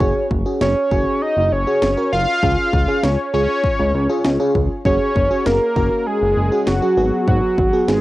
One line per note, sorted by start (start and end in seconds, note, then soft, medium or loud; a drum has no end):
0.00 0.14 F#1 loud
0.00 0.26 C#4 medium
0.00 0.26 F#4 medium
0.00 0.26 G#4 medium
0.00 0.27 C#5 loud
0.00 kick loud
0.31 0.44 F#1 loud
0.31 kick medium
0.46 0.71 C#4 medium
0.46 0.71 F#4 medium
0.46 0.71 G#4 medium
0.61 0.75 F#1 loud
0.61 1.23 C#5 medium
0.61 snare loud
0.91 1.05 F#1 loud
0.91 1.34 C#4 medium
0.91 1.34 F#4 medium
0.91 1.34 G#4 medium
0.91 kick medium
1.22 1.53 D#5 loud
1.37 1.50 F#1 loud
1.52 1.65 F#1 loud
1.52 2.12 C#5 loud
1.67 1.84 C#4 medium
1.67 1.84 F#4 medium
1.67 1.84 G#4 medium
1.82 1.96 F#1 loud
1.82 snare loud
1.97 2.23 C#4 medium
1.97 2.23 F#4 medium
1.97 2.23 A#4 medium
2.13 2.26 F#1 medium
2.13 3.05 F5 loud
2.43 2.56 C#2 loud
2.43 2.68 C#4 medium
2.43 2.68 F4 medium
2.43 2.68 G#4 medium
2.43 kick loud
2.73 2.87 C#2 loud
2.73 kick medium
2.88 3.14 C#4 medium
2.88 3.14 F4 medium
2.88 3.14 G#4 medium
3.03 3.17 C#2 loud
3.03 3.33 C#5 medium
3.03 snare loud
3.34 3.47 C#2 medium
3.34 3.77 C#4 medium
3.34 3.77 F4 medium
3.34 3.77 G#4 medium
3.34 4.51 C#5 medium
3.64 kick medium
3.79 3.93 C#2 medium
3.94 4.08 C#2 loud
4.09 4.27 C#4 medium
4.09 4.27 F4 medium
4.09 4.27 G#4 medium
4.25 4.38 C#2 loud
4.25 snare loud
4.40 4.65 C#4 medium
4.40 4.65 F4 medium
4.40 4.65 G#4 medium
4.55 4.69 C#2 medium
4.55 kick medium
4.85 4.99 F#1 loud
4.85 5.11 C#4 medium
4.85 5.11 F#4 medium
4.85 5.11 G#4 medium
4.85 5.47 C#5 loud
4.85 kick loud
5.16 5.29 F#1 loud
5.16 kick medium
5.31 5.56 C#4 medium
5.31 5.56 F#4 medium
5.31 5.56 G#4 medium
5.46 5.59 F#1 loud
5.46 6.08 A#4 loud
5.46 snare loud
5.76 5.90 F#1 medium
5.76 6.19 C#4 medium
5.76 6.19 F#4 medium
5.76 6.19 A#4 medium
5.76 kick medium
6.07 6.69 G#4 loud
6.22 6.35 F#1 loud
6.37 6.50 F#1 loud
6.52 6.69 C#4 medium
6.52 6.69 F#4 medium
6.52 6.69 G#4 medium
6.67 6.81 F#1 loud
6.67 7.27 F#4 medium
6.67 snare loud
6.82 6.97 C#4 medium
6.82 6.96 F#4 medium
6.82 6.96 G#4 medium
6.97 7.11 G#1 medium
6.97 7.58 B3 medium
6.97 7.58 F#4 medium
6.97 7.58 G#4 medium
7.28 7.41 G#1 loud
7.28 7.90 F#4 medium
7.28 kick loud
7.58 7.72 G#1 loud
7.58 kick medium
7.73 7.99 B3 medium
7.73 7.99 F#4 medium
7.73 7.99 G#4 medium
7.88 8.01 G#1 loud
7.88 8.01 G#4 medium
7.88 snare loud